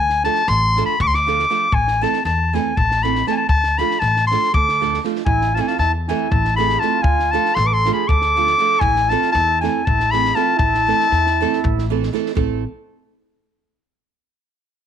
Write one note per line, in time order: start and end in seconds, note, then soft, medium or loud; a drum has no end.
0.00 0.26 D2 loud
0.00 0.22 G#5 loud
0.10 snare soft
0.24 0.42 F3 medium
0.24 0.42 A3 medium
0.24 0.42 D4 medium
0.24 0.42 F4 medium
0.24 0.42 A4 medium
0.24 0.50 A5 loud
0.24 snare soft
0.35 snare soft
0.47 0.79 A1 loud
0.47 0.84 C6 loud
0.47 snare soft
0.77 0.94 F3 medium
0.77 0.94 A3 medium
0.77 0.94 D4 medium
0.77 0.95 F4 medium
0.77 0.95 A4 medium
0.77 snare soft
0.86 1.00 B5 loud
1.00 1.43 D2 loud
1.00 1.09 D6 loud
1.00 kick loud
1.07 1.16 C6 loud
1.14 1.76 D6 loud
1.14 snare soft
1.26 1.43 F3 medium
1.26 1.44 A3 medium
1.26 1.44 D4 medium
1.26 1.44 F4 medium
1.26 1.44 A4 medium
1.26 snare soft
1.39 snare soft
1.50 1.67 F3 medium
1.50 1.67 A3 medium
1.50 1.67 D4 medium
1.50 1.67 F4 medium
1.50 1.67 A4 medium
1.50 snare soft
1.72 2.03 A1 loud
1.72 2.04 G#5 loud
1.72 kick medium
1.88 snare soft
2.01 2.19 E3 medium
2.01 2.19 A3 medium
2.01 2.19 C4 medium
2.01 2.19 E4 medium
2.01 2.20 A4 medium
2.01 2.24 A5 loud
2.01 snare soft
2.13 snare soft
2.25 2.56 E2 loud
2.25 2.56 A5 loud
2.25 snare soft
2.53 2.71 E3 medium
2.53 2.71 A3 medium
2.53 2.72 C4 medium
2.53 2.72 E4 medium
2.53 2.72 A4 medium
2.53 2.78 G#5 medium
2.53 snare soft
2.77 3.21 A1 loud
2.77 3.05 A5 loud
2.77 kick medium
2.91 snare soft
3.03 3.20 E3 medium
3.03 3.21 A3 medium
3.03 3.21 C4 medium
3.03 3.21 E4 medium
3.03 3.21 A4 medium
3.03 3.26 B5 loud
3.03 snare soft
3.15 snare soft
3.26 3.43 E3 medium
3.26 3.44 A3 medium
3.26 3.44 C4 medium
3.26 3.44 E4 medium
3.26 3.44 A4 medium
3.26 3.32 A5 loud
3.26 snare soft
3.31 3.39 G#5 medium
3.37 3.48 A5 medium
3.49 3.80 D2 loud
3.49 3.80 A5 loud
3.49 kick medium
3.64 snare soft
3.78 3.96 F3 medium
3.78 3.96 A3 medium
3.78 3.96 D4 medium
3.78 3.97 F4 medium
3.78 3.97 A4 medium
3.78 4.01 B5 loud
3.78 snare soft
3.91 snare soft
4.00 4.33 A1 loud
4.00 4.26 A5 loud
4.00 snare soft
4.17 snare soft
4.27 4.49 F3 medium
4.27 4.51 C6 loud
4.31 4.49 A3 medium
4.31 4.49 D4 medium
4.31 4.49 F4 medium
4.31 4.53 A4 medium
4.31 4.49 A4 medium
4.31 snare soft
4.43 snare soft
4.54 4.97 D2 loud
4.54 5.00 A4 medium
4.54 4.99 D6 loud
4.54 kick loud
4.69 snare soft
4.80 4.98 F3 medium
4.80 4.98 A3 medium
4.80 4.98 D4 medium
4.80 4.99 F4 medium
4.80 4.98 A4 medium
4.80 snare soft
4.94 snare soft
5.04 5.21 F3 medium
5.04 5.21 A3 medium
5.04 5.22 D4 medium
5.04 5.22 F4 medium
5.04 5.22 A4 medium
5.04 snare soft
5.16 snare soft
5.25 5.58 A1 loud
5.25 5.53 E4 loud
5.25 5.56 G#5 loud
5.25 kick loud
5.41 snare soft
5.54 5.74 E3 medium
5.54 5.74 A3 medium
5.54 5.60 F4 medium
5.54 5.62 A5 medium
5.54 snare soft
5.58 5.74 C4 medium
5.58 5.74 E4 medium
5.58 5.66 E4 medium
5.58 5.75 A4 medium
5.58 5.69 G#5 medium
5.67 5.79 F4 medium
5.67 5.79 A5 medium
5.67 snare soft
5.79 6.10 E2 loud
5.79 5.92 E4 medium
5.79 5.92 A5 loud
5.79 snare soft
6.08 6.26 E3 medium
6.08 6.26 A3 medium
6.08 6.27 C4 medium
6.08 6.30 E4 medium
6.08 6.26 E4 medium
6.08 6.27 A4 medium
6.08 6.32 G#5 medium
6.08 snare soft
6.30 6.75 A1 loud
6.30 6.58 E4 medium
6.30 6.56 A5 loud
6.30 kick loud
6.45 snare soft
6.56 6.75 E3 medium
6.56 6.75 A3 medium
6.56 6.76 C4 medium
6.56 6.76 E4 medium
6.56 6.79 G#4 medium
6.56 6.76 A4 medium
6.56 6.81 B5 loud
6.56 snare soft
6.69 snare soft
6.77 7.00 F4 medium
6.77 7.04 A5 loud
6.82 6.99 E3 medium
6.82 6.99 A3 medium
6.82 6.99 C4 medium
6.82 6.99 E4 medium
6.82 6.99 A4 medium
6.82 snare soft
7.01 7.35 D2 loud
7.01 7.31 F4 loud
7.01 7.33 G#5 loud
7.01 kick loud
7.19 snare soft
7.31 7.51 F3 medium
7.31 7.51 A3 medium
7.31 7.51 D4 medium
7.31 7.56 F4 medium
7.31 7.51 F4 medium
7.31 7.51 A4 medium
7.31 7.56 A5 loud
7.31 snare soft
7.45 snare soft
7.54 7.88 A1 loud
7.54 7.63 A4 medium
7.54 7.68 C6 loud
7.54 snare soft
7.64 7.72 B4 medium
7.64 7.75 D6 loud
7.71 7.92 A4 medium
7.71 7.93 C6 loud
7.85 8.03 F3 medium
7.85 8.04 A3 medium
7.85 8.03 D4 medium
7.85 8.04 F4 medium
7.85 8.04 A4 medium
7.85 snare soft
7.93 8.08 G#4 medium
7.93 8.09 B5 loud
8.08 8.53 D2 loud
8.08 8.81 A4 medium
8.08 8.82 D6 loud
8.08 kick loud
8.21 snare soft
8.36 8.53 F3 medium
8.36 8.53 A3 medium
8.36 8.53 D4 medium
8.36 8.54 F4 medium
8.36 8.54 A4 medium
8.36 snare soft
8.47 snare soft
8.58 8.76 F3 medium
8.58 8.76 A3 medium
8.58 8.76 D4 medium
8.58 8.76 F4 medium
8.58 8.77 A4 medium
8.58 snare soft
8.80 9.13 A1 loud
8.80 9.10 E4 loud
8.80 9.11 G#5 loud
8.80 kick loud
8.96 snare soft
9.09 9.28 E3 medium
9.09 9.28 A3 medium
9.09 9.29 C4 medium
9.09 9.29 E4 medium
9.09 9.33 F4 medium
9.09 9.29 A4 medium
9.09 9.32 A5 loud
9.09 snare soft
9.22 snare soft
9.32 9.66 E2 loud
9.32 9.60 E4 loud
9.32 9.60 A5 loud
9.32 snare soft
9.61 9.80 E3 medium
9.61 9.80 A3 medium
9.61 9.80 C4 medium
9.61 9.85 E4 medium
9.61 9.81 E4 medium
9.61 9.81 A4 medium
9.61 9.87 G#5 medium
9.61 snare soft
9.85 10.31 A1 loud
9.85 10.13 E4 medium
9.85 10.13 A5 loud
9.85 kick loud
10.00 snare soft
10.11 10.30 E3 medium
10.11 10.31 A3 medium
10.11 10.31 C4 medium
10.11 10.31 E4 medium
10.11 10.35 G#4 medium
10.11 10.31 A4 medium
10.11 10.37 B5 loud
10.11 snare soft
10.25 snare soft
10.34 10.53 E3 medium
10.34 10.53 A3 medium
10.34 10.53 C4 medium
10.34 10.54 E4 medium
10.34 10.58 F4 medium
10.34 10.54 A4 medium
10.34 10.58 A5 loud
10.34 snare soft
10.56 10.90 A1 medium
10.56 11.85 E4 loud
10.56 11.87 A5 loud
10.56 kick loud
10.74 snare soft
10.87 11.05 E3 medium
10.87 11.06 A3 medium
10.87 11.06 C4 medium
10.87 11.06 E4 medium
10.87 11.06 A4 medium
10.87 snare soft
11.00 snare soft
11.12 11.43 E2 loud
11.12 snare soft
11.27 snare soft
11.40 11.58 E3 medium
11.40 11.58 A3 medium
11.40 11.59 C4 medium
11.40 11.59 E4 medium
11.40 11.59 A4 loud
11.40 snare soft
11.53 snare soft
11.64 12.07 A1 loud
11.64 kick loud
11.78 snare soft
11.90 12.08 E3 medium
11.90 12.08 A3 medium
11.90 12.08 C4 medium
11.90 12.08 E4 medium
11.90 12.09 A4 medium
12.03 snare soft
12.13 12.30 E3 medium
12.13 12.31 A3 medium
12.13 12.31 C4 medium
12.13 12.31 E4 medium
12.13 12.31 A4 loud
12.13 snare soft
12.26 snare soft
12.35 12.64 A1 loud
12.35 12.63 A3 medium
12.35 12.63 C4 medium
12.35 12.63 E4 medium
12.35 12.63 A4 loud
12.35 kick medium